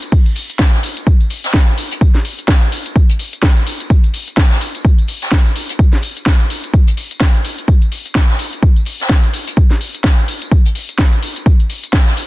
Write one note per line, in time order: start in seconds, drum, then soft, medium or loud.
0.02 closed hi-hat medium
0.02 tambourine soft
0.12 kick loud
0.12 tambourine medium
0.12 tambourine soft
0.12 crash loud
0.26 closed hi-hat medium
0.26 tambourine soft
0.36 open hi-hat loud
0.36 tambourine medium
0.50 closed hi-hat medium
0.50 tambourine soft
0.59 kick loud
0.59 snare loud
0.59 tambourine medium
0.59 tambourine soft
0.73 snare soft
0.73 closed hi-hat soft
0.73 tambourine soft
0.83 open hi-hat loud
0.83 tambourine medium
0.97 closed hi-hat medium
0.97 tambourine soft
1.07 kick loud
1.07 tambourine loud
1.07 tambourine soft
1.21 closed hi-hat soft
1.21 tambourine soft
1.30 open hi-hat loud
1.30 tambourine medium
1.44 snare soft
1.44 closed hi-hat medium
1.44 tambourine soft
1.54 kick loud
1.54 snare loud
1.54 tambourine medium
1.54 tambourine soft
1.68 closed hi-hat medium
1.68 tambourine soft
1.77 open hi-hat loud
1.77 tambourine medium
1.91 closed hi-hat medium
1.91 closed hi-hat soft
1.91 tambourine soft
2.01 kick loud
2.01 tambourine medium
2.01 tambourine soft
2.15 snare soft
2.15 closed hi-hat medium
2.15 tambourine soft
2.25 open hi-hat loud
2.25 tambourine medium
2.39 closed hi-hat medium
2.39 tambourine soft
2.48 kick loud
2.48 snare loud
2.48 tambourine medium
2.48 tambourine soft
2.62 closed hi-hat soft
2.62 tambourine soft
2.72 open hi-hat loud
2.72 tambourine medium
2.86 closed hi-hat medium
2.86 tambourine soft
2.96 kick loud
2.96 tambourine soft
2.96 tambourine medium
3.09 closed hi-hat soft
3.09 tambourine soft
3.19 open hi-hat loud
3.19 tambourine medium
3.33 closed hi-hat medium
3.33 tambourine soft
3.42 kick loud
3.42 snare loud
3.42 tambourine medium
3.42 tambourine soft
3.57 closed hi-hat medium
3.57 tambourine soft
3.66 open hi-hat loud
3.66 tambourine medium
3.80 closed hi-hat medium
3.80 tambourine soft
3.90 kick loud
3.90 tambourine medium
3.90 tambourine soft
4.04 closed hi-hat medium
4.04 tambourine soft
4.14 open hi-hat loud
4.14 tambourine medium
4.28 closed hi-hat medium
4.28 tambourine soft
4.37 kick loud
4.37 snare loud
4.37 tambourine medium
4.37 tambourine soft
4.50 snare soft
4.50 closed hi-hat soft
4.50 tambourine soft
4.60 open hi-hat loud
4.60 tambourine medium
4.75 closed hi-hat medium
4.75 tambourine soft
4.85 kick loud
4.85 tambourine medium
4.85 tambourine soft
4.98 closed hi-hat soft
4.98 tambourine soft
5.08 open hi-hat loud
5.08 tambourine medium
5.22 snare medium
5.22 closed hi-hat medium
5.22 tambourine soft
5.31 kick loud
5.31 snare loud
5.31 tambourine soft
5.31 tambourine medium
5.46 closed hi-hat medium
5.46 tambourine soft
5.56 open hi-hat loud
5.56 tambourine medium
5.69 closed hi-hat medium
5.69 closed hi-hat soft
5.69 tambourine soft
5.79 kick loud
5.79 tambourine medium
5.79 tambourine soft
5.93 snare soft
5.93 closed hi-hat soft
5.93 tambourine soft
6.02 open hi-hat loud
6.02 tambourine medium
6.17 closed hi-hat medium
6.17 tambourine soft
6.26 kick loud
6.26 snare loud
6.26 tambourine soft
6.26 tambourine loud
6.40 closed hi-hat soft
6.40 tambourine soft
6.50 open hi-hat loud
6.50 tambourine medium
6.64 closed hi-hat medium
6.64 tambourine soft
6.74 kick loud
6.74 tambourine medium
6.74 tambourine soft
6.87 closed hi-hat soft
6.87 tambourine soft
6.97 open hi-hat loud
6.97 tambourine medium
7.11 closed hi-hat medium
7.11 tambourine soft
7.20 kick loud
7.20 snare loud
7.20 tambourine medium
7.20 tambourine soft
7.35 closed hi-hat medium
7.35 tambourine soft
7.44 open hi-hat loud
7.44 tambourine medium
7.58 closed hi-hat medium
7.58 tambourine soft
7.68 kick loud
7.68 tambourine medium
7.68 tambourine soft
7.82 closed hi-hat soft
7.82 tambourine soft
7.92 open hi-hat loud
7.92 tambourine medium
8.06 closed hi-hat medium
8.06 tambourine soft
8.15 kick loud
8.15 snare loud
8.15 tambourine medium
8.15 tambourine soft
8.29 snare soft
8.29 closed hi-hat soft
8.29 tambourine soft
8.39 open hi-hat loud
8.39 tambourine medium
8.53 closed hi-hat medium
8.53 tambourine soft
8.63 kick loud
8.63 tambourine soft
8.63 tambourine medium
8.76 closed hi-hat soft
8.76 tambourine soft
8.85 open hi-hat loud
8.85 tambourine medium
9.00 snare soft
9.00 closed hi-hat medium
9.00 tambourine soft
9.09 kick loud
9.09 snare loud
9.09 tambourine medium
9.09 tambourine soft
9.24 closed hi-hat medium
9.24 tambourine soft
9.33 open hi-hat loud
9.33 tambourine medium
9.47 closed hi-hat soft
9.47 closed hi-hat medium
9.47 tambourine soft
9.56 kick loud
9.56 tambourine medium
9.56 tambourine soft
9.70 snare soft
9.70 closed hi-hat medium
9.70 tambourine soft
9.81 open hi-hat loud
9.81 tambourine medium
9.95 closed hi-hat medium
9.95 tambourine soft
10.04 kick loud
10.04 snare loud
10.04 tambourine loud
10.04 tambourine soft
10.18 closed hi-hat soft
10.18 tambourine soft
10.28 open hi-hat loud
10.28 tambourine medium
10.42 closed hi-hat medium
10.42 tambourine soft
10.52 kick loud
10.52 tambourine medium
10.52 tambourine soft
10.65 closed hi-hat soft
10.65 tambourine soft
10.75 open hi-hat loud
10.75 tambourine medium
10.89 closed hi-hat medium
10.89 tambourine soft
10.98 kick loud
10.98 snare loud
10.98 tambourine medium
10.98 tambourine soft
11.13 closed hi-hat medium
11.13 tambourine soft
11.22 open hi-hat loud
11.22 tambourine medium
11.36 closed hi-hat medium
11.36 tambourine soft
11.46 kick loud
11.46 tambourine medium
11.46 tambourine soft
11.60 closed hi-hat medium
11.60 tambourine soft
11.70 open hi-hat medium
11.70 tambourine medium
11.84 closed hi-hat medium
11.84 tambourine soft
11.93 kick loud
11.93 snare loud
11.93 tambourine medium
11.93 tambourine soft
12.07 snare soft
12.07 closed hi-hat soft
12.07 tambourine soft
12.16 open hi-hat loud
12.16 tambourine medium